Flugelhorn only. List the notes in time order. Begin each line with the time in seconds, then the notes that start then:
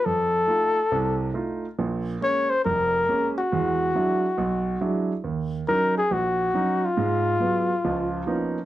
0.05 A4
2.23 C#5
2.50 C5
2.65 A#4
3.38 F#4
5.68 A#4
5.98 G#4
6.13 F#4
6.85 F4